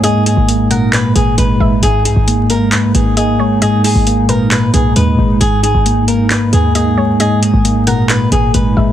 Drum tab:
HH |xxxxxxx-|xxxxxxx-|xoxxxxx-|xxxxxxx-|
CP |----x---|----x---|----x---|----x---|

HH |xxxxxxx-|
CP |----x---|